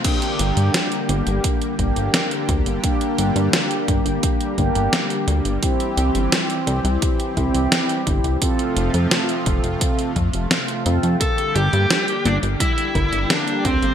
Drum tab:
CC |x---------------|----------------|----------------|----------------|
HH |xxxxxxxxxxxxxxxx|xxxxxxxxxxxxxxxx|xxxxxxxxxxxxxxxx|xxxxxxxxxxxxxxxx|
SD |----o-------o---|----o-------o---|----o-------o---|----o-------o---|
BD |o-------o-o---o-|o-----o-o-o-----|o-------o-o---o-|o-----o-o-o-----|

CC |----------------|
HH |xxxxxxxxxxxxxxxx|
SD |----o-------o---|
BD |o-------o-o---o-|